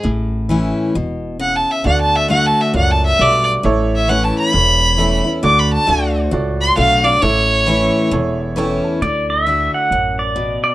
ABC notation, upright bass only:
X:1
M:4/4
L:1/8
Q:"Swing" 1/4=134
K:D
V:1 name="Upright bass" clef=bass
A,,,4 E,,,4 | D,,4 C,,2 B,,,2 | A,,,4 E,,,4 | D,,2 D,,2 C,,2 B,,,2 |
A,,,4 E,,,4 | D,,4 A,,,4 |]